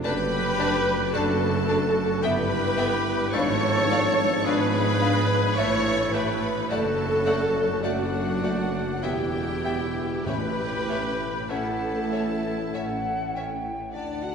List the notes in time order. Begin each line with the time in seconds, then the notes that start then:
0.03 F#1 F#2 A3 D4 G4 A4 B4 D5 A5 B5
0.58 D4 D5 A5
1.13 F#1 F#2 D4 F#4 A4 D5 A5
1.67 D4 D5 A5
2.21 G1 G2 G3 B3 E4 G4 B4 E5 G5 B5
2.76 B3 E5 G5
3.33 G#1 G#2 F3 D4 A4 C#5 D5 F5 C#6
3.90 D4 D5 F5
4.45 G#1 G#2 D4 G#4 B4 D5 F5 B5
5.01 D4 D5 F5
5.56 A1 A2 E3 A3 E4 A4 C#5 E5 C#6
6.13 A3 G4 B4 E5 B5
6.69 F#1 F#2 F#3 A3 D4 F#4 A4 D5 F#5 A5
7.25 A3 D5 F#5
7.81 F#1 F#2 F#3 A3 D4 F#4 D5 F#5
8.42 A3 D5 F#5
9.02 E1 E2 B2 E3 B3 E4 G4 E5 G5
9.63 B3 E5 G5
10.24 A1 A2 E3 C#4 E4 G4 B4 C#5 E5 B5
10.88 C#4 C#5 E5
11.49 A1 A2 E3 C#4 E4 A4 C#5 E5 F#5 A5
12.10 C#4 C#5 E5
12.72 A1 A2 C#4 C#5 E5 F#5
13.35 C#4 C#5 E5 G5
13.93 D2 D3 D4 D5 F#5 A5
14.22 F#4 F#5